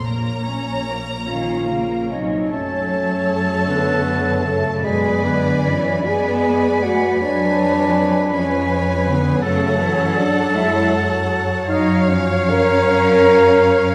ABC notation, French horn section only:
X:1
M:6/8
L:1/8
Q:3/8=52
K:Bbm
V:1 name="French horn section"
z3 F2 E | [K:F#m] C3 B,2 A, | G, B, C G2 F | D3 C2 B, |
A, C D E z2 | [K:Gblyd] E D B4 |]